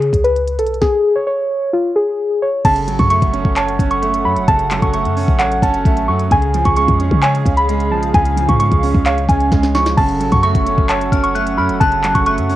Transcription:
Already playing: C#3 G#4
0.02 closed hi-hat
0.13 C#2, kick, closed hi-hat
0.24 B4, closed hi-hat
0.36 closed hi-hat
0.47 closed hi-hat
0.59 B1 A4, closed hi-hat
0.66 closed hi-hat
0.74 closed hi-hat
0.81 G#4, kick, snare
1.16 C#5
1.27 C#5
1.73 F4
1.96 G#4
2.42 C#5
2.65 F#1 C#3 F#3 C#4 A4 F#5 A5, kick, closed hi-hat, crash
2.76 closed hi-hat
2.87 G#1 F#3, closed hi-hat
2.99 F#2 C#6, kick, closed hi-hat
3.10 A3 C#6, closed hi-hat
3.22 F#1, kick, closed hi-hat
3.33 C#4, closed hi-hat
3.45 F#1, kick
3.56 C#5 A5, clap, closed hi-hat
3.68 closed hi-hat
3.79 F#1 C#4, kick, closed hi-hat
3.91 C#6, closed hi-hat
4.02 A3, closed hi-hat
4.14 closed hi-hat
4.25 F#2 F#3 B5
4.36 F#1, closed hi-hat
4.48 F#1 C#3 A5, kick, closed hi-hat
4.59 closed hi-hat
4.71 F#3, clap, closed hi-hat
4.82 F#1 C#6, kick, closed hi-hat
4.93 A3 C#6, closed hi-hat
5.05 F#2, closed hi-hat
5.17 C#4, open hi-hat
5.28 A1, kick
5.39 C#5 F#5, clap, closed hi-hat
5.52 closed hi-hat
5.62 F#1 C#4 A5, kick, closed hi-hat
5.74 closed hi-hat
5.85 A1 A3, kick, closed hi-hat
5.97 closed hi-hat
6.08 F#2 F#3 C#6
6.19 closed hi-hat
6.31 C#2 C#3 G#4 F5 G#5, kick, closed hi-hat
6.42 closed hi-hat
6.54 F3, closed hi-hat
6.65 C#2 C#6, kick, closed hi-hat
6.76 G#3 C#6, closed hi-hat
6.88 F2, kick, closed hi-hat
7.00 C#4, closed hi-hat
7.11 C#3, kick
7.22 C#5 G#5, clap, closed hi-hat
7.35 closed hi-hat
7.46 C#2 C#4, kick, closed hi-hat
7.57 B5, closed hi-hat
7.69 G#3, closed hi-hat
7.80 closed hi-hat
7.91 B1 F3 A5
8.03 closed hi-hat
8.14 C#2 C#3 G#5, kick, closed hi-hat
8.25 closed hi-hat
8.37 F3, closed hi-hat
8.49 G#2 C#6, kick, closed hi-hat
8.60 G#3 C#6, closed hi-hat
8.72 C#2, kick, closed hi-hat
8.83 C#4, open hi-hat
8.95 C#2, kick
9.06 C#5 F5, clap, closed hi-hat
9.18 closed hi-hat
9.29 C#2 C#4 G#5, kick, closed hi-hat
9.40 closed hi-hat
9.52 C#2 G#3, kick, snare, closed hi-hat
9.63 snare, closed hi-hat
9.75 F3 C#6, snare
9.86 snare, closed hi-hat
9.97 F#1 C#3 F#3 A4 F#5 A5, kick, crash
10.09 closed hi-hat
10.20 G#1 F#3, closed hi-hat
10.32 F#2 C#6, kick, closed hi-hat
10.43 A3 C#6, closed hi-hat
10.55 F#1, kick, closed hi-hat
10.66 C#4, closed hi-hat
10.78 F#1, kick
10.89 C#5 A5, clap, closed hi-hat
11.01 closed hi-hat
11.12 F#1 C#4 F6, kick, closed hi-hat
11.23 C#6, closed hi-hat
11.35 A3 F#6, closed hi-hat
11.47 closed hi-hat
11.58 F#2 F#3 B5 F6
11.69 F#1, closed hi-hat
11.80 F#1 C#3 A5 F#6, kick, closed hi-hat
11.92 closed hi-hat
12.04 F#3, clap, closed hi-hat
12.15 F#1 C#6, kick, closed hi-hat
12.26 A3 C#6 F#6, closed hi-hat
12.38 F#2, closed hi-hat
12.49 C#4, open hi-hat

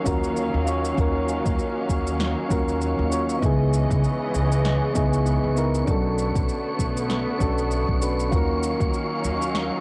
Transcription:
Already playing: D#3 F#3 A#3 C#4 F4 F#4 A#4 F5 C#6
0.04 D#2 C#4 F4 F#4 A#4, kick, shaker
0.24 shaker
0.37 shaker
0.54 D#2
0.65 C#4 F4 F#4 C#5, shaker
0.85 shaker
0.94 D#2 C#4 F4, kick, shaker
0.98 F#4 A#4
1.29 shaker
1.46 D#2, kick, shaker
1.59 shaker
1.89 D#2, kick, shaker
2.07 shaker
2.20 snare, shaker
2.49 D#2 C#4 F4 F#4 A#4, kick, shaker
2.68 shaker
2.82 shaker
2.99 D#2
3.10 C#4 F4 F#4 C#5, shaker
3.29 shaker
3.39 C#2 C#3 E3 G#3 B3 D#4 D#5, kick, shaker
3.43 E4 G#4
3.73 shaker
3.90 C#2, kick, shaker
4.04 shaker
4.34 C#2, shaker
4.52 shaker
4.65 snare, shaker
4.94 C#2 B3 D#4 E4 G#4, kick, shaker
5.13 shaker
5.26 shaker
5.44 C#2
5.55 B3 D#4 E4 A#4, shaker
5.75 shaker
5.84 B1 D3 A3 B3 C#4 D4, kick, shaker
5.88 F#4 A4
6.18 shaker
6.35 B1, kick, shaker
6.49 shaker
6.79 B1, kick, shaker
6.97 shaker
7.10 snare, shaker
7.39 B1 C#4 D4 F#4 A4, kick, shaker
7.58 shaker
7.71 shaker
7.89 B1, kick
8.00 C#4 D4 F#4 B4, shaker
8.20 shaker
8.29 D#2 D#3 F#3 A#3 C#4 F4 F5, kick, shaker
8.33 F#4 A#4
8.63 shaker
8.80 D#2, kick, shaker
8.94 shaker
9.24 D#2, shaker
9.42 shaker
9.55 snare, shaker

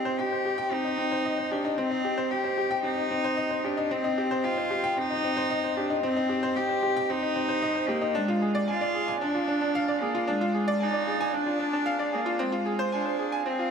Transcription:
Already playing: C4 D#4 G4
0.05 C5
0.19 G4 G5
0.32 C5
0.45 G4
0.58 G5
0.72 C4 D#4
0.85 D#4
0.98 C4
1.12 C5
1.25 D#5
1.38 C5
1.51 D4 G4
1.65 D#4
1.78 C4
1.91 D#4
2.05 G4
2.17 C5
2.31 G4 G5
2.44 C5
2.58 G4
2.71 G5
2.84 C4 D#4
2.98 D#4
3.11 C4
3.24 C5
3.37 D#5
3.51 C5
3.64 D4 G4
3.77 D#4
3.91 C4
4.04 D#4
4.18 G4
4.31 C5
4.43 F4 G5
4.58 C5
4.71 G4
4.84 G5
4.97 C4 D#4
5.10 D#4
5.24 C4
5.37 C5
5.50 D#5
5.64 C5
5.77 D4 G4
5.90 D#4
6.03 C4
6.17 D#4
6.29 G4
6.43 C5
6.56 G4 G5
6.69 C5
6.83 G4
6.97 G5
7.09 C4 D#4
7.23 D#4
7.36 C4
7.49 C5
7.62 D#5
7.75 C5
7.88 A#3 G4
8.02 D#4
8.15 G#3 D4
8.28 F4
8.42 G#4
8.55 D5
8.68 F4 G#5
8.81 D5
8.94 G#4
9.08 G#5
9.21 D4
9.35 F4
9.48 D4
9.61 D4
9.75 F5
9.88 D5
10.01 A#3 G#4
10.15 F4
10.27 G#3 D4
10.41 F4
10.54 G#4
10.68 D5
10.80 D#4 G#5
10.94 D5
11.07 G#4
11.21 G#5
11.34 D4
11.47 F4
11.60 D4
11.73 D4
11.86 F5
11.99 D5
12.12 A#3 G#4
12.26 F4
12.39 G#3 C4
12.52 F4
12.66 G#4
12.79 C5
12.92 D4 G#5
13.05 C5
13.19 G#4
13.32 G#5
13.46 C4
13.59 F4

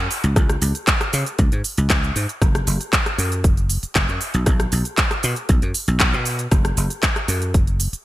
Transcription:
0.11 open hi-hat, shaker
0.24 C#2, closed hi-hat, shaker
0.36 C#2, kick, cross-stick, closed hi-hat, shaker
0.49 cross-stick, closed hi-hat, shaker
0.62 C#2, open hi-hat, shaker
0.75 closed hi-hat, shaker
0.87 kick, clap, closed hi-hat, shaker
1.01 cross-stick, closed hi-hat, shaker
1.13 C#3, open hi-hat, shaker
1.26 closed hi-hat, shaker
1.39 C#2, kick, closed hi-hat, shaker
1.52 G#2, closed hi-hat, shaker
1.64 open hi-hat, shaker
1.78 C#2, closed hi-hat, shaker
1.90 kick, clap, closed hi-hat, shaker
2.04 shaker
2.16 G#2, open hi-hat, shaker
2.29 closed hi-hat, shaker
2.41 F#1, kick, cross-stick, closed hi-hat, shaker
2.55 cross-stick, closed hi-hat, shaker
2.67 F#1, open hi-hat, shaker
2.81 closed hi-hat, shaker
2.93 kick, clap, closed hi-hat, shaker
3.06 cross-stick, closed hi-hat, shaker
3.18 F#2, open hi-hat, shaker
3.32 closed hi-hat, shaker
3.44 F#1, kick, closed hi-hat, shaker
3.57 closed hi-hat, shaker
3.70 open hi-hat, shaker
3.83 muted slap bass stroke, closed hi-hat, shaker
3.95 F#1, kick, clap, closed hi-hat, shaker
4.09 F#2, shaker
4.21 open hi-hat, shaker
4.34 B1, closed hi-hat, shaker
4.46 B1, kick, cross-stick, closed hi-hat, shaker
4.60 cross-stick, closed hi-hat, shaker
4.72 B1, open hi-hat, shaker
4.85 closed hi-hat, shaker
4.98 kick, clap, closed hi-hat, shaker
5.11 cross-stick, closed hi-hat, shaker
5.23 B2, open hi-hat, shaker
5.36 closed hi-hat, shaker
5.49 B1, kick, closed hi-hat, shaker
5.62 F#2, closed hi-hat, shaker
5.74 open hi-hat, shaker
5.88 B1, closed hi-hat, shaker
6.00 kick, clap, closed hi-hat, shaker
6.14 B2, shaker
6.25 open hi-hat, shaker
6.39 closed hi-hat, shaker
6.51 F#1, kick, cross-stick, closed hi-hat, shaker
6.65 cross-stick, closed hi-hat, shaker
6.77 F#1, open hi-hat, shaker
6.90 closed hi-hat, shaker
7.03 kick, clap, closed hi-hat, shaker
7.16 cross-stick, closed hi-hat, shaker
7.28 F#2, open hi-hat, shaker
7.42 closed hi-hat, shaker
7.54 F#1, kick, closed hi-hat, shaker
7.67 closed hi-hat, shaker
7.80 open hi-hat, shaker
7.93 muted slap bass stroke, closed hi-hat, shaker

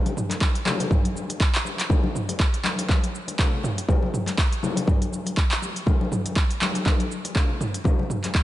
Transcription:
0.06 closed hi-hat, muted conga, high conga
0.17 mid tom, shaker
0.29 clap, closed hi-hat, high conga, shaker
0.41 kick, clap, muted conga, shaker
0.55 closed hi-hat
0.65 clap, high conga, low conga, shaker
0.80 closed hi-hat, muted conga, shaker
0.91 kick, mid tom, high conga, shaker
1.05 closed hi-hat
1.15 high conga, shaker
1.29 closed hi-hat, muted conga, shaker
1.40 kick, clap, shaker
1.55 clap, closed hi-hat
1.65 muted conga, shaker
1.80 clap, closed hi-hat, shaker
1.90 kick, high conga, low conga, shaker
2.04 muted conga, high conga
2.15 mid tom, shaker
2.28 closed hi-hat, high conga, shaker
2.39 kick, clap, muted conga, shaker
2.54 closed hi-hat
2.64 clap, high conga, shaker
2.78 closed hi-hat, muted conga, shaker
2.89 kick, clap, high conga, shaker
3.04 closed hi-hat
3.15 shaker
3.28 closed hi-hat, muted conga, shaker
3.39 kick, clap, low conga, shaker
3.63 mid tom, muted conga, shaker
3.78 closed hi-hat, shaker
3.89 kick, high conga, low conga, shaker
4.02 muted conga, high conga
4.14 mid tom, shaker
4.26 clap, closed hi-hat, high conga, shaker
4.38 kick, clap, muted conga, shaker
4.52 closed hi-hat
4.63 high conga, low conga, shaker
4.76 closed hi-hat, muted conga, shaker
4.87 kick, mid tom, high conga, shaker
5.02 closed hi-hat
5.12 high conga, shaker
5.26 closed hi-hat, muted conga, shaker
5.37 kick, clap, shaker
5.51 clap, closed hi-hat
5.62 muted conga, shaker
5.76 closed hi-hat, shaker
5.86 kick, high conga, low conga, shaker
6.01 muted conga, high conga
6.12 mid tom, shaker
6.26 closed hi-hat, high conga, shaker
6.36 kick, clap, muted conga, shaker
6.50 closed hi-hat
6.62 clap, high conga, shaker
6.75 closed hi-hat, muted conga, shaker
6.86 kick, clap, high conga, shaker
7.00 closed hi-hat
7.12 shaker
7.25 closed hi-hat, muted conga, shaker
7.36 kick, clap, low conga, shaker
7.61 mid tom, muted conga, shaker
7.74 closed hi-hat, shaker
7.84 kick, high conga, low conga, shaker
7.99 muted conga, high conga
8.10 mid tom, shaker
8.24 clap, closed hi-hat, high conga, shaker
8.35 kick, clap, muted conga, shaker

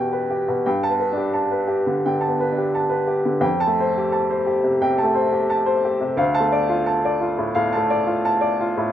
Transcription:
Already playing: B2 B3 G4 B4 G5
0.12 B4
0.30 G4
0.48 B2
0.66 G2 G5
0.83 A5
0.89 B3
1.00 B4
1.12 D4
1.17 G4
1.34 A5
1.52 B4
1.68 G4
1.86 D3
2.06 D3 G5
2.21 A5
2.27 B3
2.40 B4
2.52 D4
2.58 G4
2.75 A5
2.89 B4
3.07 G4
3.25 D3
3.41 F2 G5
3.60 A5
3.67 A3
3.80 C5
3.98 G4
4.12 A5
4.30 C5
4.46 G4
4.64 C3
4.82 C3 G5
4.98 A5
5.03 A3
5.15 C5
5.32 G4
5.50 A5
5.66 C5
5.84 G4
6.01 C3
6.17 D2 F5
6.34 A5
6.40 A3
6.52 D5
6.69 F4
6.86 A5
7.05 D5
7.20 F4
7.38 A2
7.55 A2 F5
7.72 A5
7.77 A3
7.90 D5
8.06 F4
8.25 A5
8.41 D5
8.60 F4
8.77 A2

